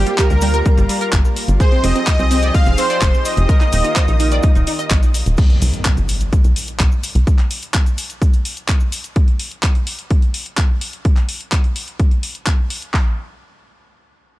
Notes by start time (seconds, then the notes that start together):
Already playing: G3 A#3 F4 G4 G5
0.06 G3, closed hi-hat, cabasa
0.18 G4 A#4 A#5, kick, clap, closed hi-hat, cabasa
0.30 D2 G3, closed hi-hat, cabasa
0.41 G3, open hi-hat, cabasa
0.54 A#4, closed hi-hat, cabasa
0.66 G3, kick, closed hi-hat, cabasa
0.77 G1 G3, closed hi-hat, cabasa
0.89 G3, open hi-hat, cabasa
1.01 A#4, closed hi-hat, cabasa
1.13 G1, kick, clap, closed hi-hat, cabasa
1.25 cabasa
1.36 open hi-hat, cabasa
1.48 G1, closed hi-hat, cabasa
1.60 F3 C4 D#4 G4 G#4 C5 C6, kick, closed hi-hat, cabasa
1.72 C4, closed hi-hat
1.84 F1 C4 D#5 D#6, open hi-hat, cabasa
1.95 C4, closed hi-hat, cabasa
2.07 C5, kick, clap, closed hi-hat, cabasa
2.19 C2 C4, closed hi-hat, cabasa
2.31 C4, open hi-hat, cabasa
2.42 D5, closed hi-hat, cabasa
2.54 C4 F5 F6, kick, closed hi-hat, cabasa
2.66 F1 C4, closed hi-hat, cabasa
2.78 C4 C5 C6, open hi-hat, cabasa
2.90 D5, closed hi-hat, cabasa
3.02 F1, kick, clap, closed hi-hat, cabasa
3.14 cabasa
3.25 D#5 D#6, open hi-hat, cabasa
3.37 F1, closed hi-hat, cabasa
3.49 D#3 A#3 F4 A#4, kick, closed hi-hat, cabasa
3.61 D#4, clap, closed hi-hat, cabasa
3.73 D#1 D#4, open hi-hat, cabasa
3.84 D#4, closed hi-hat, cabasa
3.96 C5, kick, clap, closed hi-hat, cabasa
4.08 A#1 D#4, closed hi-hat, cabasa
4.20 D#4, open hi-hat, cabasa
4.31 D5, closed hi-hat, cabasa
4.43 D#4, kick, closed hi-hat, cabasa
4.55 D#1 D#4, closed hi-hat, cabasa
4.67 D#4, open hi-hat, cabasa
4.79 D#5, closed hi-hat, cabasa
4.90 A#1, kick, clap, closed hi-hat, cabasa
5.03 closed hi-hat, cabasa
5.14 open hi-hat, cabasa
5.26 D#1, closed hi-hat, cabasa
5.37 kick, closed hi-hat, crash, impact, cabasa
5.50 closed hi-hat
5.62 C2, open hi-hat, cabasa
5.73 closed hi-hat, cabasa
5.85 kick, clap, closed hi-hat, cabasa
5.97 G1, closed hi-hat, cabasa
6.09 open hi-hat, cabasa
6.20 closed hi-hat, cabasa
6.33 kick, closed hi-hat, cabasa
6.44 C2, closed hi-hat, cabasa
6.56 open hi-hat, cabasa
6.67 closed hi-hat, cabasa
6.80 C2, kick, clap, closed hi-hat, cabasa
6.92 cabasa
7.03 open hi-hat, cabasa
7.15 C2, closed hi-hat, cabasa
7.27 kick, closed hi-hat, cabasa
7.39 clap, closed hi-hat
7.51 open hi-hat, cabasa
7.62 closed hi-hat, cabasa
7.74 kick, clap, closed hi-hat, cabasa
7.86 closed hi-hat, cabasa
7.98 open hi-hat, cabasa
8.10 closed hi-hat, cabasa
8.22 kick, closed hi-hat, cabasa
8.33 closed hi-hat, cabasa
8.45 open hi-hat, cabasa
8.57 closed hi-hat, cabasa
8.69 kick, clap, closed hi-hat, cabasa
8.80 cabasa
8.92 open hi-hat, cabasa
9.04 closed hi-hat, cabasa
9.16 kick, closed hi-hat
9.28 closed hi-hat
9.39 open hi-hat
9.51 closed hi-hat
9.63 kick, clap, closed hi-hat
9.75 closed hi-hat
9.87 open hi-hat
9.99 closed hi-hat
10.10 kick, closed hi-hat
10.22 closed hi-hat
10.34 open hi-hat
10.46 closed hi-hat
10.57 kick, clap, closed hi-hat
10.81 open hi-hat
10.93 closed hi-hat
11.05 kick, closed hi-hat
11.17 clap, closed hi-hat
11.29 open hi-hat
11.41 closed hi-hat
11.52 kick, clap, closed hi-hat
11.64 closed hi-hat
11.76 open hi-hat
11.88 closed hi-hat
11.99 kick, closed hi-hat
12.11 closed hi-hat
12.23 open hi-hat
12.35 closed hi-hat
12.47 kick, clap, closed hi-hat
12.70 open hi-hat
12.82 closed hi-hat
12.94 kick, clap